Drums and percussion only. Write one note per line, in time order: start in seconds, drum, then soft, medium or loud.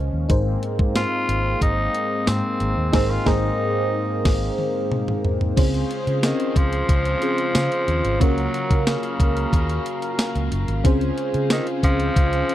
0.30 kick loud
0.30 closed hi-hat medium
0.63 closed hi-hat medium
0.79 kick loud
0.95 snare loud
0.95 closed hi-hat medium
0.95 tambourine medium
1.29 closed hi-hat medium
1.61 kick medium
1.61 closed hi-hat medium
1.95 closed hi-hat medium
2.27 snare loud
2.27 closed hi-hat loud
2.27 tambourine medium
2.60 closed hi-hat medium
2.93 kick loud
2.93 snare loud
2.93 crash medium
3.26 kick loud
3.26 snare loud
4.25 kick loud
4.25 snare loud
4.25 crash medium
4.58 high tom medium
4.92 mid tom medium
5.08 mid tom medium
5.25 floor tom loud
5.41 floor tom medium
5.57 kick loud
5.57 closed hi-hat medium
5.57 crash medium
5.74 closed hi-hat soft
5.91 closed hi-hat medium
6.07 closed hi-hat medium
6.23 snare loud
6.23 closed hi-hat medium
6.23 tambourine medium
6.40 closed hi-hat medium
6.56 kick medium
6.56 closed hi-hat medium
6.73 closed hi-hat medium
6.89 kick medium
6.89 closed hi-hat medium
7.05 closed hi-hat medium
7.22 closed hi-hat medium
7.38 closed hi-hat medium
7.55 snare loud
7.55 closed hi-hat loud
7.55 tambourine medium
7.72 closed hi-hat medium
7.88 closed hi-hat medium
8.05 closed hi-hat medium
8.21 kick loud
8.21 closed hi-hat medium
8.38 closed hi-hat soft
8.54 closed hi-hat medium
8.71 kick loud
8.71 closed hi-hat medium
8.87 snare loud
8.87 closed hi-hat medium
8.87 tambourine medium
9.03 closed hi-hat medium
9.20 kick medium
9.20 closed hi-hat medium
9.37 closed hi-hat medium
9.53 kick medium
9.53 closed hi-hat medium
9.70 closed hi-hat medium
9.86 closed hi-hat medium
10.02 closed hi-hat medium
10.19 snare loud
10.19 closed hi-hat loud
10.19 tambourine medium
10.36 closed hi-hat medium
10.52 closed hi-hat medium
10.68 closed hi-hat medium
10.85 kick loud
10.85 closed hi-hat medium
11.01 closed hi-hat soft
11.18 closed hi-hat medium
11.34 closed hi-hat medium
11.50 snare loud
11.50 closed hi-hat medium
11.50 tambourine medium
11.67 closed hi-hat medium
11.83 kick medium
11.83 closed hi-hat medium
12.00 closed hi-hat medium
12.16 kick medium
12.16 closed hi-hat medium
12.33 closed hi-hat medium
12.49 closed hi-hat medium